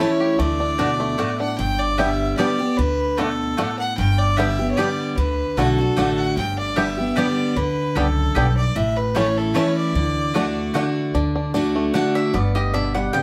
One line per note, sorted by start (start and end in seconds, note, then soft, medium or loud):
0.00 0.37 E3 medium
0.00 0.35 A3 medium
0.00 0.38 A3 medium
0.00 0.38 C#4 loud
0.00 0.39 E4 medium
0.00 0.38 E4 loud
0.00 0.16 G4 medium
0.00 0.41 C#5 medium
0.20 0.39 G4 medium
0.39 1.12 D2 medium
0.39 1.15 D3 medium
0.39 0.96 A3 medium
0.39 1.39 D5 medium
0.60 0.78 D4 medium
0.78 1.17 B2 medium
0.78 0.88 A3 medium
0.78 1.18 D4 medium
0.78 0.88 F#4 medium
0.78 0.89 D5 medium
0.78 0.89 F#5 medium
1.00 1.55 A3 medium
1.18 1.57 A2 medium
1.18 1.28 A3 medium
1.18 1.39 D4 medium
1.18 1.28 F#4 medium
1.18 1.29 D5 medium
1.18 1.29 F#5 medium
1.40 1.59 D4 medium
1.40 1.57 F#5 medium
1.58 2.32 G1 medium
1.58 2.35 G2 medium
1.58 1.81 G5 loud
1.79 2.00 D5 loud
1.98 2.36 D3 medium
1.98 2.37 G3 medium
1.98 2.08 G3 medium
1.98 2.08 B3 medium
1.98 2.37 B3 medium
1.98 2.09 B3 medium
1.98 2.09 D4 medium
1.98 2.08 G4 medium
1.98 2.38 G4 medium
1.98 2.08 D5 medium
1.98 2.37 E5 loud
1.98 2.08 G5 loud
2.38 2.59 D3 medium
2.38 2.59 G3 medium
2.38 2.48 G3 medium
2.38 2.48 B3 medium
2.38 2.59 B3 loud
2.38 2.48 B3 medium
2.38 2.49 D4 medium
2.38 2.48 G4 medium
2.38 2.58 G4 loud
2.38 2.79 D5 medium
2.38 2.48 D5 medium
2.38 2.48 G5 medium
2.59 2.79 B3 soft
2.59 2.78 G4 medium
2.77 3.52 D2 medium
2.77 3.55 D3 medium
2.77 3.19 B4 loud
3.17 3.56 B2 medium
3.17 3.27 A3 medium
3.17 3.28 A3 medium
3.17 3.22 D4 medium
3.17 3.28 F#4 medium
3.17 3.78 A4 loud
3.17 3.28 D5 loud
3.17 3.28 F#5 loud
3.57 3.96 A2 loud
3.57 3.67 A3 loud
3.57 3.68 A3 medium
3.57 3.62 D4 medium
3.57 3.68 F#4 medium
3.57 3.68 D5 medium
3.57 3.68 F#5 loud
3.79 3.97 F#5 loud
3.97 4.71 G1 loud
3.97 4.74 G2 medium
3.97 4.20 G5 loud
4.19 4.38 D5 loud
4.37 4.58 D3 medium
4.37 4.58 G3 medium
4.37 4.48 G3 medium
4.37 4.47 B3 loud
4.37 4.59 B3 medium
4.37 4.48 B3 medium
4.37 4.48 D4 medium
4.37 4.47 G4 medium
4.37 4.58 G4 loud
4.37 4.47 D5 loud
4.37 4.71 E5 loud
4.37 4.48 G5 loud
4.59 4.78 B3 soft
4.59 4.77 G4 medium
4.71 4.79 C#5 medium
4.77 5.15 D3 medium
4.77 5.16 G3 loud
4.77 4.87 G3 medium
4.77 4.87 B3 medium
4.77 5.16 B3 loud
4.77 4.88 D4 medium
4.77 4.87 G4 loud
4.77 5.17 G4 loud
4.77 5.17 D5 medium
4.77 4.87 D5 loud
4.77 4.88 G5 loud
5.17 5.42 D2 medium
5.17 5.56 D3 medium
5.17 5.59 B4 medium
5.57 5.91 B1 medium
5.57 5.78 D3 medium
5.57 5.67 A3 medium
5.57 5.78 A3 medium
5.57 5.67 A3 medium
5.57 5.61 D4 medium
5.57 5.78 D4 medium
5.57 5.67 F#4 medium
5.57 5.77 F#4 medium
5.57 6.20 A4 medium
5.57 5.67 D5 medium
5.57 5.67 F#5 loud
5.78 5.97 D4 medium
5.78 5.96 F#4 medium
5.96 6.31 A1 medium
5.96 6.35 D3 loud
5.96 6.06 A3 medium
5.96 6.35 A3 loud
5.96 6.07 A3 medium
5.96 6.01 D4 medium
5.96 6.36 D4 medium
5.96 6.07 F#4 medium
5.96 6.36 F#4 loud
5.96 6.07 D5 loud
5.96 6.07 F#5 loud
6.19 6.36 F#5 loud
6.36 7.10 G1 medium
6.36 7.13 G2 medium
6.36 6.57 G5 loud
6.59 6.78 D5 loud
6.76 6.97 D3 medium
6.76 6.97 G3 medium
6.76 6.86 G3 medium
6.76 6.86 B3 medium
6.76 6.98 B3 medium
6.76 6.87 B3 medium
6.76 6.87 D4 medium
6.76 6.86 G4 medium
6.76 6.96 G4 medium
6.76 6.86 D5 medium
6.76 7.18 E5 medium
6.76 6.86 G5 loud
6.97 7.17 B3 medium
6.97 7.15 G4 medium
7.16 7.54 D3 loud
7.16 7.55 G3 medium
7.16 7.26 G3 medium
7.16 7.26 B3 medium
7.16 7.55 B3 loud
7.16 7.26 B3 medium
7.16 7.27 D4 medium
7.16 7.26 G4 medium
7.16 7.55 G4 loud
7.16 7.26 D5 loud
7.16 7.59 D5 medium
7.16 7.26 G5 medium
7.56 7.80 D2 medium
7.56 8.32 D3 medium
7.56 7.98 B4 medium
7.95 8.29 C#2 medium
7.95 8.34 F#2 medium
7.95 8.06 G3 medium
7.95 8.05 B3 medium
7.95 8.06 B3 medium
7.95 8.06 D4 medium
7.95 8.05 G4 medium
7.95 8.57 A4 medium
7.95 8.06 D5 loud
7.95 8.06 G5 medium
8.35 8.69 B1 medium
8.35 8.74 G2 medium
8.35 8.45 G3 medium
8.35 8.45 B3 medium
8.35 8.46 B3 medium
8.35 8.46 D4 medium
8.35 8.45 G4 loud
8.35 8.45 D5 loud
8.35 8.45 G5 loud
8.57 8.77 D5 medium
8.75 9.48 A1 loud
8.75 9.52 A2 medium
8.75 8.98 E5 medium
8.97 9.18 B4 medium
9.15 9.53 E3 medium
9.15 9.25 A3 medium
9.15 9.53 A3 medium
9.15 9.25 A3 medium
9.15 9.25 C#4 medium
9.15 9.54 C#4 medium
9.15 9.25 E4 medium
9.15 9.54 E4 loud
9.15 9.25 E4 medium
9.15 9.25 C#5 loud
9.15 9.39 C#5 medium
9.15 9.25 A5 loud
9.37 9.57 A4 medium
9.54 9.93 E3 loud
9.54 9.64 A3 medium
9.54 9.93 A3 loud
9.54 9.65 A3 medium
9.54 9.65 C#4 medium
9.54 9.94 C#4 loud
9.54 9.64 E4 medium
9.54 9.65 E4 medium
9.54 9.94 E4 loud
9.54 9.65 C#5 loud
9.54 9.76 C#5 medium
9.54 9.65 A5 loud
9.77 10.71 D5 medium
9.94 10.68 D2 medium
9.94 10.33 D3 medium
10.34 10.72 D3 medium
10.34 10.44 A3 medium
10.34 10.73 A3 medium
10.34 10.44 A3 medium
10.34 10.73 D4 medium
10.34 10.38 D4 medium
10.34 10.44 F#4 medium
10.34 10.74 F#4 medium
10.34 10.44 D5 loud
10.34 10.45 F#5 medium
10.74 11.12 D3 medium
10.74 10.84 A3 medium
10.74 11.13 A3 loud
10.74 10.84 A3 medium
10.74 11.13 D4 loud
10.74 10.78 D4 medium
10.74 10.84 F#4 medium
10.74 11.13 F#4 medium
10.74 10.84 D5 loud
10.74 10.84 F#5 loud
11.14 11.87 D2 medium
11.14 11.53 D3 medium
11.14 11.35 D4 medium
11.35 11.54 D4 medium
11.54 11.92 D3 medium
11.54 11.92 A3 medium
11.54 11.94 D4 medium
11.54 11.93 D4 medium
11.54 11.93 F#4 loud
11.76 12.30 A3 medium
11.94 12.32 D3 medium
11.94 12.32 A3 medium
11.94 12.15 D4 medium
11.94 12.33 D4 loud
11.94 12.33 F#4 loud
11.94 12.15 F#5 medium
12.15 12.73 D4 medium
12.15 12.33 E5 medium
12.34 13.07 G1 medium
12.34 13.10 G2 medium
12.34 12.91 B3 medium
12.34 12.54 D5 medium
12.55 13.10 G4 medium
12.55 12.73 D#5 medium
12.74 13.12 B2 medium
12.74 13.23 D4 medium
12.74 12.94 E5 medium
12.95 13.23 G3 medium
12.95 13.13 F#5 medium
13.13 13.23 C#3 medium
13.13 13.23 B3 medium
13.13 13.23 G5 loud